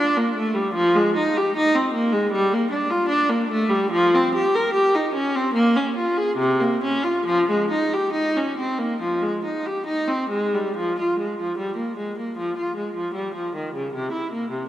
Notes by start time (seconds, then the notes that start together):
Already playing: D4
0.17 A#3
0.35 A3
0.54 G3
0.74 F3
0.96 G#3
1.16 D#4
1.37 G4
1.57 D#4
1.75 C4
1.93 A#3
2.13 G#3
2.32 G3
2.53 A#3
2.71 D4
2.90 F4
3.09 D4
3.29 A#3
3.50 A3
3.69 G3
3.91 F3
4.15 C4
4.35 G4
4.55 A#4
4.73 G4
4.95 D#4
5.14 C#4
5.36 C4
5.54 A#3
5.76 C#4
5.96 F4
6.17 G#4
6.37 C3
6.60 A#3
6.84 C#4
7.04 F4
7.26 F3
7.50 G#3
7.71 D#4
7.94 G4
8.13 D#4
8.36 C#4
8.58 C4
8.78 A#3
9.02 F3
9.22 G#3
9.45 D#4
9.66 G4
9.86 D#4
10.08 C4
10.29 G#3
10.54 G3
10.76 F3
10.99 F4
11.19 G#3
11.40 F3
11.58 G3
11.76 A#3
11.97 G#3
12.18 A#3
12.38 F3
12.57 F4
12.76 G#3
12.95 F3
13.14 G3
13.35 F3
13.55 D#3
13.75 C#3
13.94 C3
14.12 E4
14.33 A#3
14.51 C3